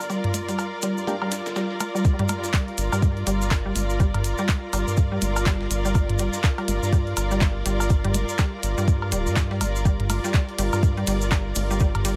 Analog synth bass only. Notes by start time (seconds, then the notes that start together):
Already playing: G1
0.83 G1
0.97 G2
1.07 G2
1.46 G1
1.56 F1
2.78 G1
2.92 G2
3.27 G1
3.76 G1
4.73 G1
4.87 G2
5.22 G1
5.71 G1
6.68 G1
6.83 G2
7.17 G1
7.66 G1
8.63 G1
8.78 G2
9.12 D1
9.26 G2
9.61 G1
10.58 G1
10.73 G2
11.07 G1
11.56 G1